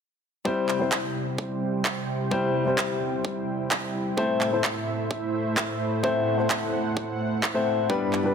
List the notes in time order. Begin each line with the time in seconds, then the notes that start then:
0.45 C3 G3 C4 E4 C5 G5, kick
0.69 clap
0.79 G3 C4 E4 C5
0.92 kick, clap
1.38 kick
1.85 kick, clap
2.31 G3 C4 E4 C5, kick
2.65 G3 C4 E4 C5
2.78 kick, clap
3.25 kick
3.71 kick, clap
4.17 A2 A3 C4 E4 C5 E5, kick
4.41 clap
4.51 A3 C4 E4 C5
4.64 kick, clap
5.11 kick
5.57 kick, clap
6.03 A3 C4 E4 C5 F#5, kick
6.37 A3 C4 E4 C5
6.50 kick, clap
6.97 kick
7.43 kick, clap
7.54 A3 C4 E4 C5
7.89 G2 G3 B3 D4 B4 D5, kick
8.13 clap
8.24 G3 B3 D4 B4